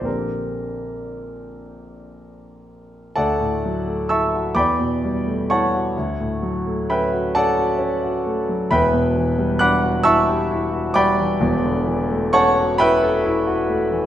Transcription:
0.01 A#1 D3 A#3 C4 G4
0.05 A#4
3.16 D2 A4 D5 F#5 A5
3.40 A2
3.65 F#3
3.88 A3
4.09 E4 E5 A5 C#6 E6
4.35 F#4
4.55 E2 D5 G5 B5 D6
4.80 B2
5.05 G3
5.26 A3
5.50 E4 C#5 F#5 A5 C#6
5.73 F#4
5.97 D2
6.20 A2
6.42 F#3
6.67 A3
6.90 C#4 B4 E5 G5 B5
7.12 F#4
7.35 C#4 A4 D5 F#5 A5
7.57 F#4
7.79 C#4
8.03 F#4
8.26 A3
8.49 F#3
8.70 E1 E2 B4 E5 G5 B5
8.93 B2
9.17 E3
9.38 G3
9.59 D4 F#5 B5 D6 F#6
9.83 F#4
10.04 E4 E5 A5 C#6 E6
10.28 G4
10.51 E4
10.72 F#4
10.94 G3 D5 G5 B5 D6
11.19 E3
11.40 E1 E2
11.64 D3
11.86 E3
12.10 A3
12.33 C#4 C#5 F#5 A5 C#6
12.57 F#4
12.78 E4 B4 E5 G5 B5
13.03 A4
13.26 E4
13.47 F#4
13.69 A3
13.91 E3

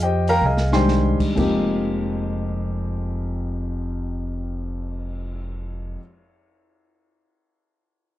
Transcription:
Already playing: F2
0.02 G4 C5 D#5 G5
0.28 A#4 F5 G5 A#5, open hi-hat
0.41 C2 G#4 G#5
0.46 D#5 F5
0.57 snare
0.72 D#3 G3 G#3 D4 C5 G5 G#5 C6, snare
0.88 snare
1.20 muted upright bass stroke, kick, crash
1.35 F1 F2 F3 G#3 A#3 D#4 G4, kick, crash
1.71 cymbal swell

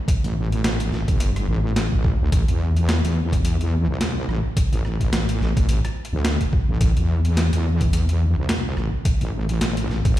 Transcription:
0.08 kick, closed hi-hat
0.24 A1, closed hi-hat
0.52 closed hi-hat
0.64 A1, snare, closed hi-hat
0.80 closed hi-hat
0.92 A1, snare
1.08 G1, kick, closed hi-hat
1.20 closed hi-hat
1.36 cross-stick, closed hi-hat
1.48 A1
1.76 snare, closed hi-hat
1.92 A1, kick
2.04 kick
2.20 D2
2.32 A1, kick, closed hi-hat
2.48 E2, closed hi-hat
2.77 closed hi-hat
2.89 snare, closed hi-hat
3.04 E2, closed hi-hat
3.32 kick, closed hi-hat
3.45 closed hi-hat
3.61 closed hi-hat
3.88 C2
4.01 snare, closed hi-hat
4.28 A1, cross-stick
4.57 kick, closed hi-hat
4.72 A1, closed hi-hat
4.85 cross-stick
5.01 kick, closed hi-hat
5.12 A1, snare, closed hi-hat
5.29 closed hi-hat
5.41 A1, snare
5.57 A1, kick, closed hi-hat
5.68 A1, closed hi-hat
5.85 cross-stick, closed hi-hat
6.05 closed hi-hat
6.13 D2
6.25 snare, closed hi-hat
6.41 kick, closed hi-hat
6.53 kick
6.69 A1
6.81 A1, kick, closed hi-hat
6.97 E2, closed hi-hat
7.25 closed hi-hat
7.37 snare, closed hi-hat
7.53 E2, closed hi-hat
7.81 kick, closed hi-hat
7.93 closed hi-hat
8.09 closed hi-hat
8.37 C2
8.49 snare, closed hi-hat
8.77 A1, cross-stick
9.05 kick, closed hi-hat
9.21 A1, closed hi-hat
9.49 closed hi-hat
9.61 A1, snare, closed hi-hat
9.77 closed hi-hat
9.89 A1, snare
10.05 G1, kick, closed hi-hat

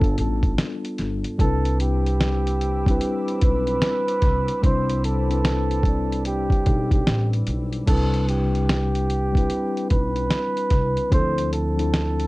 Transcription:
Already playing: G1 G3 B3 D4 F4 A4
0.02 kick, closed hi-hat
0.18 A1 A4, closed hi-hat
0.43 kick, closed hi-hat
0.58 snare, closed hi-hat
0.85 closed hi-hat
0.98 G1, snare, closed hi-hat
1.24 closed hi-hat
1.38 C2 G3 C4 D4 E4 A4 B5 D6 E6, kick, closed hi-hat
1.43 B4
1.65 closed hi-hat
1.80 G4, closed hi-hat
2.06 closed hi-hat
2.21 snare, closed hi-hat
2.47 closed hi-hat
2.61 closed hi-hat
2.86 G3 C4 D4 E4, kick, closed hi-hat
2.91 B4
3.01 closed hi-hat
3.28 closed hi-hat
3.42 B1 B4, kick, closed hi-hat
3.67 closed hi-hat
3.82 snare, closed hi-hat
4.08 closed hi-hat
4.22 C2, kick, snare, closed hi-hat
4.48 closed hi-hat
4.62 C2 G3 C4 D4 C5, kick, closed hi-hat
4.66 E4 C5
4.90 closed hi-hat
5.04 A4, closed hi-hat
5.29 G3 C4 D4 E4, closed hi-hat
5.34 B4
5.45 snare, closed hi-hat
5.71 closed hi-hat
5.83 G3 C4 D4, kick, closed hi-hat
5.88 E4 D5
6.12 closed hi-hat
6.25 G4, closed hi-hat
6.50 kick, closed hi-hat
6.66 B1, kick, closed hi-hat
6.91 G4, kick, closed hi-hat
7.07 A1, snare, closed hi-hat
7.33 closed hi-hat
7.47 B1, closed hi-hat
7.73 closed hi-hat
7.86 C2 G3 C4 D4 A4, kick, closed hi-hat, crash
7.91 E4 B4
8.14 closed hi-hat
8.28 G4, closed hi-hat
8.55 closed hi-hat
8.69 snare, closed hi-hat
8.95 closed hi-hat
9.10 closed hi-hat
9.33 G3 C4 D4, kick
9.37 E4 B4, closed hi-hat
9.50 closed hi-hat
9.77 closed hi-hat
9.90 B1 B4, kick, closed hi-hat
10.16 closed hi-hat
10.31 snare, closed hi-hat
10.57 closed hi-hat
10.70 C2, kick, snare, closed hi-hat
10.97 closed hi-hat
11.10 D2 F3 C4 D4 E4 C5, kick, closed hi-hat
11.15 A4
11.38 closed hi-hat
11.53 A4, closed hi-hat
11.76 F3 C4 D4 E4, closed hi-hat
11.81 A4
11.94 snare, closed hi-hat
12.20 closed hi-hat

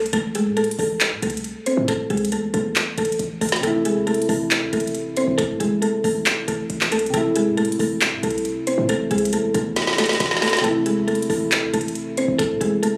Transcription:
Already playing: C2 A3 A4
0.06 closed hi-hat
0.13 A1 A3 A4, closed hi-hat
0.35 G#3 G#4, closed hi-hat
0.46 A2
0.57 A3 A4, closed hi-hat
0.64 closed hi-hat
0.71 closed hi-hat
0.79 A1 A3 A4, open hi-hat
1.00 clap, closed hi-hat
1.12 A2
1.22 C2 A3 A4, closed hi-hat
1.30 closed hi-hat
1.37 closed hi-hat
1.44 closed hi-hat
1.66 C4 C5, closed hi-hat
1.77 A2
1.88 A3 A4, kick, closed hi-hat
2.10 C2 G#3 G#4, closed hi-hat
2.17 closed hi-hat
2.25 closed hi-hat
2.32 E2 A3 A4, closed hi-hat
2.54 E2 A3 A4, closed hi-hat
2.76 clap, closed hi-hat
2.98 A1 A3 A4, closed hi-hat
3.05 closed hi-hat
3.12 closed hi-hat
3.19 A1, closed hi-hat
3.41 A1 A3 A4, closed hi-hat, open hi-hat
3.49 snare, closed hi-hat
3.56 closed hi-hat
3.60 A1 C3 A3 A4, closed hi-hat
3.67 E4
3.85 G#3 G#4, closed hi-hat
3.96 E2
4.07 A3 A4, closed hi-hat
4.14 closed hi-hat
4.22 closed hi-hat
4.29 A1 A3 A4, open hi-hat
4.51 clap, closed hi-hat
4.62 E2
4.73 A1 A3 A4, closed hi-hat
4.80 closed hi-hat
4.87 closed hi-hat
4.95 closed hi-hat
5.17 C4 C5, closed hi-hat
5.28 A1
5.38 A3 A4, kick, closed hi-hat
5.49 A2
5.60 A1 G#3 G#4, closed hi-hat
5.82 A3 A4, closed hi-hat
6.04 A1 A3 A4, open hi-hat
6.26 clap, closed hi-hat
6.48 A1 A3 A4, closed hi-hat
6.70 A1, closed hi-hat
6.81 clap
6.92 C2 A3 A4, closed hi-hat
6.99 closed hi-hat
7.06 C3, closed hi-hat
7.14 A1 A3 E4 A4, closed hi-hat
7.36 G#3 G#4, closed hi-hat
7.47 A2
7.57 A3 A4, closed hi-hat
7.65 closed hi-hat
7.72 closed hi-hat
7.79 A1 A3 A4, open hi-hat
8.01 clap, closed hi-hat
8.12 A2
8.23 C2 A3 A4, closed hi-hat
8.30 closed hi-hat
8.38 closed hi-hat
8.45 closed hi-hat
8.67 C4 C5, closed hi-hat
8.78 A2
8.89 A1 A3 A4, closed hi-hat
9.11 C2 G#3 G#4, closed hi-hat
9.18 closed hi-hat
9.25 closed hi-hat
9.33 E2 A3 A4, closed hi-hat
9.54 E2 A3 A4, closed hi-hat
9.76 snare, closed hi-hat
9.82 snare
9.87 snare
9.93 snare
9.98 A3 A4, snare, closed hi-hat
10.04 snare, closed hi-hat
10.09 snare, closed hi-hat
10.15 snare
10.20 A1, snare, closed hi-hat
10.26 snare
10.31 snare
10.37 snare
10.42 A3 A4, snare, closed hi-hat, open hi-hat
10.48 snare, closed hi-hat
10.53 snare, closed hi-hat
10.59 C3, snare
10.64 A1 A3 A4, closed hi-hat
10.68 E4
10.86 G#3 G#4, closed hi-hat
10.97 E2
11.08 A3 A4, closed hi-hat
11.15 closed hi-hat
11.22 closed hi-hat
11.30 A1 A3 A4, open hi-hat
11.52 clap, closed hi-hat
11.63 E2
11.73 A1 A3 A4, closed hi-hat
11.81 closed hi-hat
11.88 closed hi-hat
11.95 closed hi-hat
12.17 C4 C5, closed hi-hat
12.28 A1
12.38 A3 A4, kick, closed hi-hat
12.50 A2
12.61 A1 G#3 G#4, closed hi-hat
12.83 A3 A4, closed hi-hat

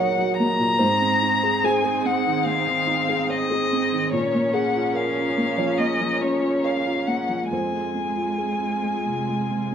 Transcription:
Already playing: A#2 F#3 A#3 D#4 F#4 A#4 C#5 D#5 F#5
0.17 F#4
0.37 A#3 A#5
0.59 A#2
0.79 G#2 C4 D#4 G#4 C5
1.02 C4
1.22 D#4
1.43 G#4
1.64 G#4 C5 G#5
1.84 G#4
2.05 C4 F#5
2.26 D#3
2.46 C4 F5
2.66 D#3
2.87 D#4
3.09 G#4
3.29 C5 D#5
3.51 G#4
3.72 C4
3.92 D#3
4.12 A#2 F3 C#4 A#4 C#5
4.34 A#3
4.53 C#4 G#4 F#5
4.74 F4
4.93 A#4 F5
5.17 F4
5.37 A#3
5.58 F3 C#5
5.78 A#3 D#5
6.00 F3
6.21 C#4 C#5
6.41 F4
6.63 A#4 C#5 F5
6.86 F4
7.07 A#3 F#5
7.29 F3
7.50 F2 G#3 C4 F4 G#4 C5 G#5
7.72 G#3
7.94 C4
8.16 F4
8.38 G#4
8.61 F4
8.83 G#3
9.06 C3
9.29 G#3
9.50 C3
9.72 C4

